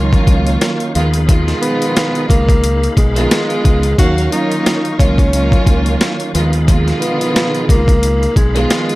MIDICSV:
0, 0, Header, 1, 6, 480
1, 0, Start_track
1, 0, Tempo, 674157
1, 916, Time_signature, 4, 2, 24, 8
1, 6375, End_track
2, 0, Start_track
2, 0, Title_t, "Tonewheel organ"
2, 0, Program_c, 0, 16
2, 0, Note_on_c, 0, 54, 64
2, 0, Note_on_c, 0, 63, 73
2, 0, Note_on_c, 0, 77, 65
2, 0, Note_on_c, 0, 85, 79
2, 659, Note_off_c, 0, 54, 0
2, 659, Note_off_c, 0, 85, 0
2, 682, Note_on_c, 0, 68, 66
2, 684, Note_on_c, 0, 83, 79
2, 2806, Note_off_c, 0, 77, 0
2, 2808, Note_off_c, 0, 63, 0
2, 2818, Note_off_c, 0, 68, 0
2, 2818, Note_off_c, 0, 83, 0
2, 2833, Note_on_c, 0, 63, 66
2, 2833, Note_on_c, 0, 77, 63
2, 2834, Note_on_c, 0, 54, 67
2, 2834, Note_on_c, 0, 85, 79
2, 4498, Note_off_c, 0, 54, 0
2, 4498, Note_off_c, 0, 85, 0
2, 4515, Note_on_c, 0, 83, 74
2, 4516, Note_on_c, 0, 68, 67
2, 6375, Note_off_c, 0, 63, 0
2, 6375, Note_off_c, 0, 68, 0
2, 6375, Note_off_c, 0, 77, 0
2, 6375, Note_off_c, 0, 83, 0
2, 6375, End_track
3, 0, Start_track
3, 0, Title_t, "Tenor saxophone"
3, 0, Program_c, 1, 66
3, 1151, Note_on_c, 1, 59, 93
3, 1605, Note_off_c, 1, 59, 0
3, 1629, Note_on_c, 1, 58, 91
3, 2084, Note_off_c, 1, 58, 0
3, 2123, Note_on_c, 1, 56, 96
3, 2811, Note_off_c, 1, 56, 0
3, 2838, Note_on_c, 1, 66, 99
3, 3053, Note_off_c, 1, 66, 0
3, 3077, Note_on_c, 1, 63, 89
3, 3528, Note_off_c, 1, 63, 0
3, 3552, Note_on_c, 1, 61, 92
3, 4246, Note_off_c, 1, 61, 0
3, 4987, Note_on_c, 1, 59, 89
3, 5443, Note_off_c, 1, 59, 0
3, 5485, Note_on_c, 1, 58, 94
3, 5932, Note_off_c, 1, 58, 0
3, 5959, Note_on_c, 1, 56, 94
3, 6375, Note_off_c, 1, 56, 0
3, 6375, End_track
4, 0, Start_track
4, 0, Title_t, "String section"
4, 0, Program_c, 2, 48
4, 0, Note_on_c, 2, 51, 105
4, 0, Note_on_c, 2, 54, 92
4, 0, Note_on_c, 2, 58, 96
4, 0, Note_on_c, 2, 61, 98
4, 0, Note_on_c, 2, 65, 112
4, 660, Note_off_c, 2, 51, 0
4, 667, Note_off_c, 2, 65, 0
4, 669, Note_on_c, 2, 51, 93
4, 670, Note_on_c, 2, 53, 90
4, 672, Note_on_c, 2, 56, 80
4, 674, Note_on_c, 2, 59, 87
4, 676, Note_on_c, 2, 65, 101
4, 678, Note_off_c, 2, 54, 0
4, 679, Note_off_c, 2, 58, 0
4, 680, Note_off_c, 2, 61, 0
4, 827, Note_off_c, 2, 51, 0
4, 828, Note_off_c, 2, 53, 0
4, 829, Note_off_c, 2, 56, 0
4, 830, Note_off_c, 2, 59, 0
4, 830, Note_off_c, 2, 65, 0
4, 912, Note_on_c, 2, 51, 111
4, 914, Note_on_c, 2, 53, 96
4, 916, Note_on_c, 2, 56, 99
4, 918, Note_on_c, 2, 47, 95
4, 920, Note_on_c, 2, 65, 111
4, 2130, Note_off_c, 2, 51, 0
4, 2131, Note_off_c, 2, 53, 0
4, 2132, Note_off_c, 2, 56, 0
4, 2133, Note_off_c, 2, 47, 0
4, 2134, Note_off_c, 2, 65, 0
4, 2243, Note_on_c, 2, 51, 103
4, 2244, Note_on_c, 2, 53, 90
4, 2247, Note_on_c, 2, 56, 97
4, 2248, Note_on_c, 2, 59, 96
4, 2250, Note_on_c, 2, 65, 114
4, 2790, Note_off_c, 2, 51, 0
4, 2791, Note_off_c, 2, 53, 0
4, 2792, Note_off_c, 2, 56, 0
4, 2793, Note_off_c, 2, 59, 0
4, 2794, Note_off_c, 2, 65, 0
4, 2833, Note_on_c, 2, 51, 97
4, 2834, Note_on_c, 2, 54, 86
4, 2836, Note_on_c, 2, 58, 85
4, 2838, Note_on_c, 2, 61, 94
4, 2840, Note_on_c, 2, 77, 106
4, 3055, Note_off_c, 2, 51, 0
4, 3056, Note_off_c, 2, 54, 0
4, 3059, Note_off_c, 2, 58, 0
4, 3060, Note_off_c, 2, 61, 0
4, 3061, Note_off_c, 2, 77, 0
4, 3063, Note_on_c, 2, 51, 102
4, 3065, Note_on_c, 2, 54, 88
4, 3067, Note_on_c, 2, 58, 87
4, 3069, Note_on_c, 2, 61, 87
4, 3070, Note_on_c, 2, 65, 107
4, 3516, Note_off_c, 2, 51, 0
4, 3517, Note_off_c, 2, 54, 0
4, 3518, Note_off_c, 2, 58, 0
4, 3519, Note_off_c, 2, 61, 0
4, 3520, Note_off_c, 2, 65, 0
4, 3540, Note_on_c, 2, 51, 94
4, 3542, Note_on_c, 2, 54, 95
4, 3544, Note_on_c, 2, 58, 93
4, 3546, Note_on_c, 2, 61, 91
4, 3548, Note_on_c, 2, 65, 108
4, 3772, Note_off_c, 2, 51, 0
4, 3772, Note_off_c, 2, 54, 0
4, 3773, Note_off_c, 2, 58, 0
4, 3774, Note_off_c, 2, 61, 0
4, 3775, Note_off_c, 2, 65, 0
4, 3796, Note_on_c, 2, 51, 99
4, 3798, Note_on_c, 2, 54, 94
4, 3800, Note_on_c, 2, 58, 99
4, 3801, Note_on_c, 2, 61, 95
4, 3803, Note_on_c, 2, 65, 117
4, 4498, Note_off_c, 2, 51, 0
4, 4505, Note_off_c, 2, 65, 0
4, 4507, Note_on_c, 2, 51, 95
4, 4509, Note_on_c, 2, 53, 90
4, 4511, Note_on_c, 2, 56, 83
4, 4512, Note_on_c, 2, 59, 84
4, 4514, Note_on_c, 2, 65, 101
4, 4517, Note_off_c, 2, 54, 0
4, 4518, Note_off_c, 2, 58, 0
4, 4519, Note_off_c, 2, 61, 0
4, 4666, Note_off_c, 2, 51, 0
4, 4667, Note_off_c, 2, 53, 0
4, 4668, Note_off_c, 2, 56, 0
4, 4668, Note_off_c, 2, 59, 0
4, 4669, Note_off_c, 2, 65, 0
4, 4752, Note_on_c, 2, 51, 110
4, 4754, Note_on_c, 2, 53, 95
4, 4756, Note_on_c, 2, 56, 98
4, 4758, Note_on_c, 2, 47, 98
4, 4759, Note_on_c, 2, 65, 114
4, 5971, Note_off_c, 2, 51, 0
4, 5971, Note_off_c, 2, 53, 0
4, 5972, Note_off_c, 2, 56, 0
4, 5973, Note_off_c, 2, 47, 0
4, 5974, Note_off_c, 2, 65, 0
4, 6084, Note_on_c, 2, 51, 103
4, 6085, Note_on_c, 2, 53, 90
4, 6087, Note_on_c, 2, 56, 103
4, 6088, Note_on_c, 2, 59, 100
4, 6090, Note_on_c, 2, 65, 116
4, 6375, Note_off_c, 2, 51, 0
4, 6375, Note_off_c, 2, 53, 0
4, 6375, Note_off_c, 2, 56, 0
4, 6375, Note_off_c, 2, 59, 0
4, 6375, Note_off_c, 2, 65, 0
4, 6375, End_track
5, 0, Start_track
5, 0, Title_t, "Fingered electric bass"
5, 0, Program_c, 3, 33
5, 0, Note_on_c, 3, 37, 89
5, 122, Note_off_c, 3, 37, 0
5, 196, Note_on_c, 3, 37, 92
5, 398, Note_off_c, 3, 37, 0
5, 681, Note_on_c, 3, 39, 106
5, 1084, Note_off_c, 3, 39, 0
5, 1639, Note_on_c, 3, 37, 93
5, 2042, Note_off_c, 3, 37, 0
5, 2116, Note_on_c, 3, 35, 93
5, 2319, Note_off_c, 3, 35, 0
5, 2602, Note_on_c, 3, 37, 89
5, 2802, Note_off_c, 3, 37, 0
5, 2840, Note_on_c, 3, 39, 109
5, 3041, Note_off_c, 3, 39, 0
5, 3559, Note_on_c, 3, 37, 85
5, 3962, Note_off_c, 3, 37, 0
5, 4036, Note_on_c, 3, 37, 94
5, 4238, Note_off_c, 3, 37, 0
5, 4522, Note_on_c, 3, 39, 103
5, 4924, Note_off_c, 3, 39, 0
5, 5479, Note_on_c, 3, 37, 94
5, 5882, Note_off_c, 3, 37, 0
5, 5956, Note_on_c, 3, 35, 92
5, 6159, Note_off_c, 3, 35, 0
5, 6375, End_track
6, 0, Start_track
6, 0, Title_t, "Drums"
6, 90, Note_on_c, 9, 36, 100
6, 97, Note_on_c, 9, 42, 37
6, 161, Note_off_c, 9, 36, 0
6, 168, Note_off_c, 9, 42, 0
6, 193, Note_on_c, 9, 36, 102
6, 196, Note_on_c, 9, 42, 78
6, 264, Note_off_c, 9, 36, 0
6, 267, Note_off_c, 9, 42, 0
6, 331, Note_on_c, 9, 42, 54
6, 403, Note_off_c, 9, 42, 0
6, 437, Note_on_c, 9, 42, 90
6, 439, Note_on_c, 9, 38, 124
6, 508, Note_off_c, 9, 42, 0
6, 510, Note_off_c, 9, 38, 0
6, 571, Note_on_c, 9, 42, 37
6, 642, Note_off_c, 9, 42, 0
6, 679, Note_on_c, 9, 42, 78
6, 750, Note_off_c, 9, 42, 0
6, 808, Note_on_c, 9, 42, 56
6, 880, Note_off_c, 9, 42, 0
6, 917, Note_on_c, 9, 36, 106
6, 918, Note_on_c, 9, 42, 102
6, 988, Note_off_c, 9, 36, 0
6, 989, Note_off_c, 9, 42, 0
6, 1054, Note_on_c, 9, 38, 35
6, 1056, Note_on_c, 9, 42, 37
6, 1125, Note_off_c, 9, 38, 0
6, 1127, Note_off_c, 9, 42, 0
6, 1158, Note_on_c, 9, 42, 83
6, 1229, Note_off_c, 9, 42, 0
6, 1294, Note_on_c, 9, 42, 55
6, 1366, Note_off_c, 9, 42, 0
6, 1399, Note_on_c, 9, 42, 88
6, 1401, Note_on_c, 9, 38, 116
6, 1470, Note_off_c, 9, 42, 0
6, 1472, Note_off_c, 9, 38, 0
6, 1532, Note_on_c, 9, 42, 36
6, 1604, Note_off_c, 9, 42, 0
6, 1636, Note_on_c, 9, 36, 95
6, 1641, Note_on_c, 9, 42, 89
6, 1708, Note_off_c, 9, 36, 0
6, 1712, Note_off_c, 9, 42, 0
6, 1770, Note_on_c, 9, 36, 92
6, 1775, Note_on_c, 9, 42, 55
6, 1841, Note_off_c, 9, 36, 0
6, 1847, Note_off_c, 9, 42, 0
6, 1877, Note_on_c, 9, 42, 91
6, 1948, Note_off_c, 9, 42, 0
6, 2018, Note_on_c, 9, 42, 38
6, 2090, Note_off_c, 9, 42, 0
6, 2114, Note_on_c, 9, 36, 100
6, 2117, Note_on_c, 9, 42, 81
6, 2185, Note_off_c, 9, 36, 0
6, 2188, Note_off_c, 9, 42, 0
6, 2252, Note_on_c, 9, 42, 55
6, 2323, Note_off_c, 9, 42, 0
6, 2358, Note_on_c, 9, 42, 95
6, 2360, Note_on_c, 9, 38, 118
6, 2429, Note_off_c, 9, 42, 0
6, 2431, Note_off_c, 9, 38, 0
6, 2493, Note_on_c, 9, 42, 36
6, 2564, Note_off_c, 9, 42, 0
6, 2599, Note_on_c, 9, 36, 101
6, 2600, Note_on_c, 9, 42, 78
6, 2670, Note_off_c, 9, 36, 0
6, 2671, Note_off_c, 9, 42, 0
6, 2729, Note_on_c, 9, 42, 57
6, 2800, Note_off_c, 9, 42, 0
6, 2837, Note_on_c, 9, 36, 103
6, 2839, Note_on_c, 9, 42, 102
6, 2908, Note_off_c, 9, 36, 0
6, 2910, Note_off_c, 9, 42, 0
6, 2976, Note_on_c, 9, 42, 37
6, 3048, Note_off_c, 9, 42, 0
6, 3079, Note_on_c, 9, 42, 81
6, 3150, Note_off_c, 9, 42, 0
6, 3215, Note_on_c, 9, 42, 56
6, 3286, Note_off_c, 9, 42, 0
6, 3320, Note_on_c, 9, 42, 83
6, 3322, Note_on_c, 9, 38, 112
6, 3391, Note_off_c, 9, 42, 0
6, 3393, Note_off_c, 9, 38, 0
6, 3453, Note_on_c, 9, 42, 37
6, 3524, Note_off_c, 9, 42, 0
6, 3557, Note_on_c, 9, 36, 99
6, 3562, Note_on_c, 9, 42, 91
6, 3628, Note_off_c, 9, 36, 0
6, 3633, Note_off_c, 9, 42, 0
6, 3690, Note_on_c, 9, 36, 96
6, 3695, Note_on_c, 9, 42, 53
6, 3761, Note_off_c, 9, 36, 0
6, 3767, Note_off_c, 9, 42, 0
6, 3797, Note_on_c, 9, 42, 90
6, 3868, Note_off_c, 9, 42, 0
6, 3931, Note_on_c, 9, 36, 101
6, 3937, Note_on_c, 9, 42, 38
6, 4002, Note_off_c, 9, 36, 0
6, 4008, Note_off_c, 9, 42, 0
6, 4034, Note_on_c, 9, 36, 100
6, 4037, Note_on_c, 9, 42, 83
6, 4105, Note_off_c, 9, 36, 0
6, 4108, Note_off_c, 9, 42, 0
6, 4172, Note_on_c, 9, 42, 52
6, 4243, Note_off_c, 9, 42, 0
6, 4277, Note_on_c, 9, 42, 88
6, 4279, Note_on_c, 9, 38, 125
6, 4349, Note_off_c, 9, 42, 0
6, 4351, Note_off_c, 9, 38, 0
6, 4413, Note_on_c, 9, 42, 37
6, 4484, Note_off_c, 9, 42, 0
6, 4520, Note_on_c, 9, 42, 82
6, 4591, Note_off_c, 9, 42, 0
6, 4650, Note_on_c, 9, 42, 55
6, 4721, Note_off_c, 9, 42, 0
6, 4757, Note_on_c, 9, 36, 106
6, 4759, Note_on_c, 9, 42, 101
6, 4828, Note_off_c, 9, 36, 0
6, 4830, Note_off_c, 9, 42, 0
6, 4895, Note_on_c, 9, 38, 36
6, 4897, Note_on_c, 9, 42, 38
6, 4966, Note_off_c, 9, 38, 0
6, 4968, Note_off_c, 9, 42, 0
6, 4999, Note_on_c, 9, 42, 84
6, 5070, Note_off_c, 9, 42, 0
6, 5134, Note_on_c, 9, 42, 55
6, 5206, Note_off_c, 9, 42, 0
6, 5240, Note_on_c, 9, 42, 82
6, 5242, Note_on_c, 9, 38, 114
6, 5311, Note_off_c, 9, 42, 0
6, 5313, Note_off_c, 9, 38, 0
6, 5372, Note_on_c, 9, 42, 37
6, 5443, Note_off_c, 9, 42, 0
6, 5476, Note_on_c, 9, 36, 98
6, 5482, Note_on_c, 9, 42, 90
6, 5548, Note_off_c, 9, 36, 0
6, 5553, Note_off_c, 9, 42, 0
6, 5610, Note_on_c, 9, 36, 91
6, 5616, Note_on_c, 9, 42, 56
6, 5681, Note_off_c, 9, 36, 0
6, 5687, Note_off_c, 9, 42, 0
6, 5717, Note_on_c, 9, 42, 90
6, 5788, Note_off_c, 9, 42, 0
6, 5859, Note_on_c, 9, 42, 38
6, 5930, Note_off_c, 9, 42, 0
6, 5954, Note_on_c, 9, 36, 100
6, 5957, Note_on_c, 9, 42, 81
6, 6025, Note_off_c, 9, 36, 0
6, 6028, Note_off_c, 9, 42, 0
6, 6092, Note_on_c, 9, 42, 53
6, 6164, Note_off_c, 9, 42, 0
6, 6198, Note_on_c, 9, 42, 90
6, 6199, Note_on_c, 9, 38, 124
6, 6269, Note_off_c, 9, 42, 0
6, 6271, Note_off_c, 9, 38, 0
6, 6332, Note_on_c, 9, 42, 36
6, 6375, Note_off_c, 9, 42, 0
6, 6375, End_track
0, 0, End_of_file